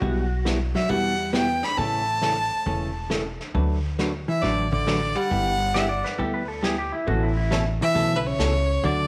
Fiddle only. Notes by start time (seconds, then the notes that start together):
0.75 E5
0.89 F#5
1.34 G5
1.64 B5
1.77 A5
4.29 E5
4.42 D5
4.72 D5
5.16 F#5
7.82 E5
8.16 B4
8.26 C#5
8.84 D5